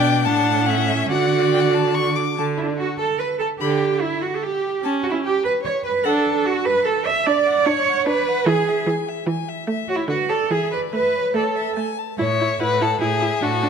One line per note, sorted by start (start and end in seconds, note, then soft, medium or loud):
0.00 0.27 B2 medium
0.00 0.23 D4 medium
0.00 0.25 D5 medium
0.00 0.27 G5 loud
0.25 1.10 A2 medium
0.25 0.69 D4 medium
0.25 0.70 F#5 medium
0.25 0.68 A5 medium
0.66 1.12 C#4 medium
0.66 1.10 E5 medium
0.66 0.90 F#5 medium
0.88 1.10 E5 medium
1.10 2.15 D3 medium
1.10 2.17 F#4 medium
1.10 2.14 D5 medium
1.10 1.48 F#5 medium
1.53 1.62 G5 medium
1.60 1.76 F#5 medium
1.74 1.96 A5 medium
1.95 2.17 C#6 medium
2.15 2.37 D6 medium
2.37 2.71 D3 soft
2.37 2.56 A5 soft
2.57 2.60 E4 medium
2.57 2.67 E4 medium
2.64 2.78 D4 soft
2.64 2.79 D4 soft
2.78 2.98 F#4 medium
2.78 2.87 F#4 medium
2.98 3.06 A4 medium
2.98 3.21 A4 medium
3.19 3.39 B4 medium
3.19 3.28 B4 medium
3.39 3.47 A4 medium
3.39 3.49 A4 soft
3.60 3.95 D3 soft
3.60 4.03 G4 medium
3.60 3.79 B5 soft
4.01 4.23 E4 medium
4.01 4.24 E4 medium
4.22 4.37 F#4 medium
4.22 4.44 F#4 medium
4.36 4.45 A4 soft
4.42 4.83 G4 medium
4.42 4.84 G4 medium
4.83 5.17 C#4 medium
4.83 5.02 A5 medium
5.03 5.06 F#4 medium
5.03 5.13 F#4 medium
5.10 5.15 E4 soft
5.10 5.24 E4 medium
5.23 5.45 G4 medium
5.23 5.44 G4 medium
5.44 5.62 B4 medium
5.44 5.53 B4 medium
5.63 5.83 C#5 medium
5.63 5.73 C#5 medium
5.84 5.92 B4 medium
5.84 6.06 B4 medium
6.04 6.39 D4 medium
6.04 6.47 A4 medium
6.04 6.23 F#5 medium
6.45 6.67 F#4 medium
6.45 6.66 F#4 medium
6.65 6.85 B4 medium
6.65 6.86 B4 medium
6.85 7.08 A4 medium
6.85 7.05 A4 medium
7.06 7.27 E5 medium
7.06 7.28 E5 medium
7.26 7.60 D4 medium
7.26 7.67 D5 medium
7.26 7.48 D5 medium
7.26 7.68 D5 medium
7.47 7.70 F#5 soft
7.65 8.00 D4 medium
7.65 8.06 C#5 medium
7.65 7.91 D5 medium
7.89 8.08 F#5 soft
8.06 8.40 D4 medium
8.06 8.49 B4 medium
8.06 8.48 B4 medium
8.06 8.30 D5 medium
8.29 8.48 F#5 soft
8.46 8.80 E3 medium
8.46 8.87 G#4 medium
8.46 8.88 G#4 medium
8.46 8.70 G#5 medium
8.69 8.91 E5 soft
8.87 9.21 E3 medium
8.87 9.10 G#5 soft
9.09 9.28 E5 soft
9.27 9.61 E3 medium
9.27 9.51 G#5 soft
9.49 9.68 E5 soft
9.68 10.02 A3 medium
9.68 9.91 E5 soft
9.88 9.97 F#4 medium
9.88 10.10 C#5 soft
9.96 10.08 E4 soft
9.96 10.08 E4 medium
10.08 10.44 D3 medium
10.08 10.31 F#4 medium
10.08 10.17 F#4 medium
10.08 10.32 B4 soft
10.29 10.37 A4 medium
10.29 10.52 A4 medium
10.29 10.51 D5 soft
10.50 10.86 E3 medium
10.50 10.70 G#4 medium
10.50 10.72 G#4 medium
10.50 10.75 E5 soft
10.71 10.79 B4 medium
10.71 10.80 B4 medium
10.71 10.94 D5 soft
10.92 11.28 A3 medium
10.92 11.34 B4 medium
10.92 11.37 B4 medium
10.92 11.18 E5 soft
11.16 11.35 C#5 soft
11.34 11.70 A3 medium
11.34 11.77 A4 medium
11.34 11.76 A4 soft
11.34 11.45 D5 medium
11.43 11.58 C#5 soft
11.57 11.75 E5 medium
11.76 12.12 A3 medium
11.76 12.00 G#5 medium
11.98 12.19 A5 soft
12.18 12.55 A2 medium
12.18 12.26 E4 soft
12.18 12.58 C#5 medium
12.18 12.62 E5 medium
12.40 12.48 E4 soft
12.60 12.96 A2 medium
12.60 12.68 E4 soft
12.60 12.83 B4 medium
12.60 13.01 F#5 medium
12.81 12.89 E4 soft
12.81 13.01 A4 medium
13.01 13.37 A2 medium
13.01 13.09 E4 medium
13.01 13.44 G#4 medium
13.01 13.44 E5 medium
13.21 13.29 E4 soft
13.42 13.69 A2 medium
13.42 13.50 D4 soft
13.42 13.69 F#4 medium
13.42 13.69 A5 medium
13.63 13.69 D4 soft